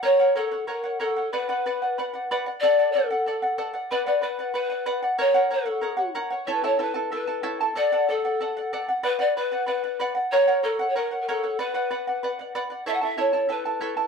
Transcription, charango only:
X:1
M:2/4
L:1/16
Q:1/4=94
K:Bm
V:1 name="Charango"
[^Acf] [Acf] [Acf] [cf] [Acf] [cf] [Acf] [cf] | [Bdf] [Bdf] [Bdf] [df] [Bdf] [df] [Bdf] [df] | [Adf] [Adf] [Adf] [df] [Adf] [df] [Adf] [df] | [Bdf] [Bdf] [Bdf] [df] [Bdf] [df] [Bdf] [df] |
[^Acf] [Acf] [Acf] [cf] [Acf] [cf] [Acf] [cf] | [EAcea] [EAcea] [EAea] [EAa] [EAea] [EAa] [EAcea] [EAa] | [Adf] [Adf] [Adf] [df] [Adf] [df] [Adf] [df] | [Bdf] [Bdf] [Bdf] [df] [Bdf] [df] [Bdf] [df] |
[^Acf] [Acf] [Acf] [cf] [Acf] [cf] [Acf] [cf] | [Bdf] [Bdf] [Bdf] [df] [Bdf] [df] [Bdf] [df] | [EAcea] [EAa] [EAcea] [EAa] [EAea] [EAa] [EAcea] [EAa] |]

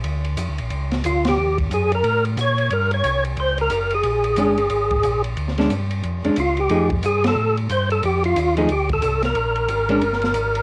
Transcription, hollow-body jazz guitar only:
X:1
M:4/4
L:1/8
Q:"Swing" 1/4=181
K:Eb
V:1 name="Hollow-body jazz guitar"
z8 | z8 | z8 | z2 [A,^CD] z4 z |
z [A,^CD] z3 [A,CD] z2 | [F,=A,E^G] z6 z | z3 [F,=A,E^G] z4 | z3 [A,^CD] z4 |]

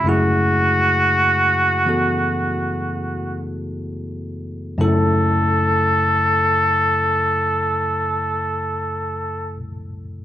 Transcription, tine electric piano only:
X:1
M:4/4
L:1/8
Q:"Swing" 1/4=44
K:F#m
V:1 name="Tine electric piano"
[F,,C,A,EG]3 [E,B,FA]4- [E,B,FA] | [F,,C,A,EA]8 |]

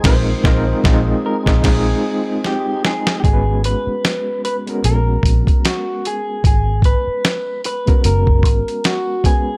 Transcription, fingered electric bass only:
X:1
M:4/4
L:1/16
Q:"Swing 16ths" 1/4=75
K:G#m
V:1 name="Fingered electric bass" clef=bass
A,,,2 A,,,2 A,,,2 z A,,, A,,,2 z6 | G,,,3 z4 z A,,,2 A,,, z4 z | G,,,3 z4 z F,,,2 G,,, z4 z |]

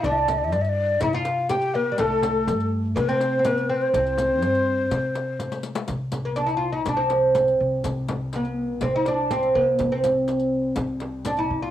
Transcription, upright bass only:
X:1
M:4/4
L:1/8
Q:1/4=123
K:none
V:1 name="Upright bass" clef=bass
C,,2 G,,2 C,4 | C,,2 G,,2 C,4 | C,,2 G,,2 C,4 | C,4 C,3 C, |
C,4 C,3 C, | C,4 C,3 C, |]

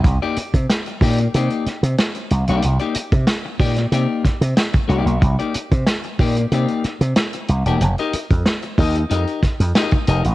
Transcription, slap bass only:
X:1
M:4/4
L:1/16
Q:1/4=93
K:Cdor
V:1 name="Slap bass" clef=bass
C,, z2 C, z2 B,,2 C, z2 C, z2 C,, _C,, | C,, z2 C, z2 B,,2 C, z2 C, z2 C,, _C,, | C,, z2 C, z2 B,,2 C, z2 C, z2 C,, =E,,, | F,,, z2 F,, z2 E,,2 F,, z2 F,, z2 F,,, A,,, |]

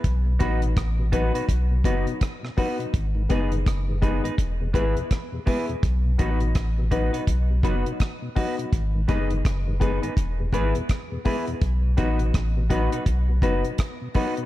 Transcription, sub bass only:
X:1
M:4/4
L:1/16
Q:"Swing 16ths" 1/4=83
K:Bmix
V:1 name="Sub bass" clef=bass
B,,,2 A,,,2 A,,,3 z B,,,2 F,,, z4 z | G,,,2 F,,,2 F,,,3 z E,,,2 G,,, z4 z | B,,,2 A,,,2 A,,,3 z B,,,2 F,,, z4 z | G,,,2 F,,,2 F,,,3 z E,,,2 G,,, z4 z |
B,,,2 A,,,2 A,,,3 z B,,,2 F,,, z4 z |]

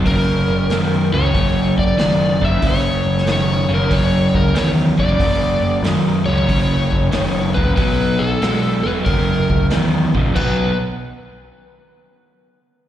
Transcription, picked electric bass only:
X:1
M:4/4
L:1/8
Q:"Swing" 1/4=93
K:B
V:1 name="Picked electric bass" clef=bass
F,,, F,,, F,, C,, F,,, F,,, F,,, F,,, | F,,, F,,, F,,, F,,, F,,, C,, E,, F,,, | F,,, F,,, F,, C,, F,,, F,,, F,,, C,, | B,,, B,,, B,,, E,,, F,,, C,, E,, A,,, |
B,,, z6 z |]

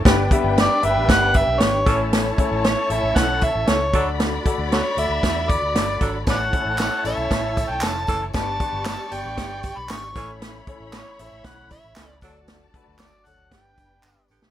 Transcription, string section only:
X:1
M:4/4
L:1/8
Q:1/4=116
K:Amix
V:1 name="String section"
[DBg]6- [DBg] [Eca]- | [Eca]6- [Eca] [Fdb]- | [Fdb]8 | [Eca]8 |
[Gdc']6- [Gdc'] [Ecb]- | [Ecb]6- [Ecb] [Fda]- | [Fda]4 [DBg]4 |]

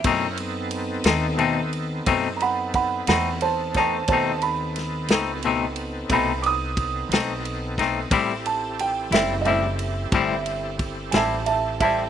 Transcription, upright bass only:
X:1
M:12/8
L:1/8
Q:3/8=60
K:Bphr
V:1 name="Upright bass" clef=bass
F,,3 ^D,,3 F,,3 E,,3 | ^D,,3 ^C,,3 =C,,3 B,,,3 | A,,,3 F,,,3 G,,,3 A,,,3 |]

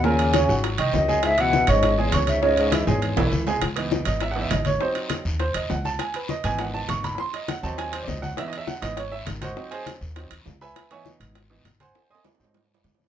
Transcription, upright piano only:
X:1
M:4/4
L:1/8
Q:1/4=202
K:C#m
V:1 name="Upright piano"
[^A,,^A,^A]2 [C,Cc] [F,Ff]2 [D,Dd]2 [G,Gg]- | [G,Gg] [E,Ee]2 [Ccc']2 [G,Gg] [Ccc']2 | [C,Cc]2 [E,Ee] [G,Gg]2 [E,Ee]2 [G,Gg] | z3 d (3e f e d c |
=c z3 c _e f a | g B d g f a c' b | [b^b] d f a g ^B [=d^d] f | (3e d e f d c e z [F^Bdf]- |
[F^Bdf] [GBdg] z4 z [=Begb]- | [Begb] [cegc'] z4 z [^Bfg^b]- | [^Bfg^b] [dgbd'] z6 |]
V:2 name="Upright piano"
z8 | z8 | z8 | z [E,B,D]4 [E,B,D] z2 |
[F,=C_E]3 z4 z | z3 [E,B,D]4- [E,B,D] | z3 [F,^B,D]4- [F,B,D] | [E,B,D] z2 [E,B,D] z4 |
[F,^B,D]3 z [F,B,D] z3 | z [E,B,D]3 z [E,B,D] z2 | z3 [F,^B,D] z4 |]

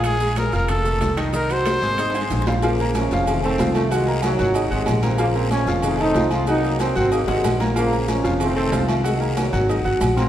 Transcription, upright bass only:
X:1
M:4/4
L:1/8
Q:1/4=187
K:Bbm
V:1 name="Upright bass" clef=bass
B,,,3 F,,,3 C,,2- | C,,3 A,,,3 B,,,2- | B,,,3 F,,,3 C,,2- | C,,3 A,,,2 A,,, B,,,2- |
B,,,3 F,,,3 C,,2- | C,,3 A,,,2 A,,, B,,,2- | B,,,3 F,,,3 C,,2- | C,,3 A,,,2 A,,, B,,,2 |]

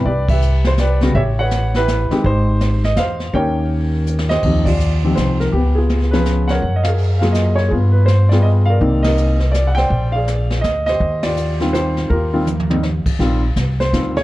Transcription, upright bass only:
X:1
M:3/4
L:1/8
Q:"Swing" 1/4=164
K:Ebmix
V:1 name="Upright bass" clef=bass
C,,6 | =A,,,4- A,,, z | A,,,4 _F,,2 | E,,6 |
[K:Eb] E,,4 C,,2 | _D,,6 | _G,,6 | G,,6 |
C,,6 | B,,,4 D,,2 | E,,6 | E,,4- E,, z |
B,,,2 C,,2 D,,2 |]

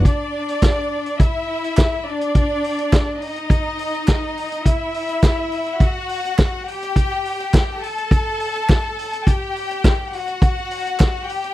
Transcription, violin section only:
X:1
M:4/4
L:1/8
Q:1/4=104
K:Em
V:1 name="Violin section"
[Dd]4 [Ee]3 [Dd]- | [Dd]3 [^D^d]4- [Dd] | [Ee]4 [Ff]3 [Gg]- | [Gg]3 [Aa]4- [Aa] |
[Gg]3 [Ff]4 [Gg] |]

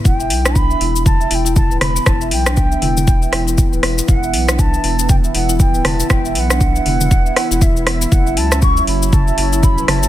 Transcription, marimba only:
X:1
M:4/4
L:1/16
Q:"Swing 16ths" 1/4=119
K:Edor
V:1 name="Marimba"
E e z D z e E z2 e E E z B z B, | E e z D z e E z2 e E E z B z B, | E e z D z e E z2 e E E z B z B, | E e z D z e E z2 e E E z B z B, |
E e z C z e E z2 e E E z B z B, |]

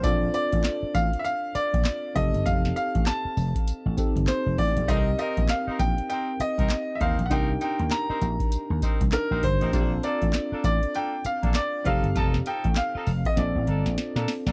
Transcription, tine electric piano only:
X:1
M:4/4
L:1/8
Q:"Swing 16ths" 1/4=99
K:Cdor
V:1 name="Tine electric piano"
[CDFA]6- [CDFA] [CEGA]- | [CEGA]4- [CEGA] [CEGA]3 | [CEGAB]8 | [DEGB]6 [DEGB]2 |
[CDFGA]6- [CDFGA] [CEGA]- | [CEGA]4 [CDFA]4 |]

